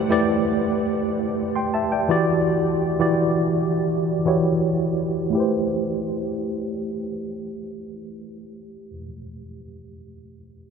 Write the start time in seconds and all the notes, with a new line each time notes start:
Already playing: A3 E4 G4 B4 C5
0.10 A3 E4 G4 B4 D5
1.55 G5 C6
1.74 E5 A5
1.92 D5 G5
2.09 E3 E4 F#4 G4 D5
2.99 E3 E4 F#4 G4 D5
4.25 E3 E4 F#4 G4 C#5
5.30 A3 E4
5.35 G4 B4
5.40 C5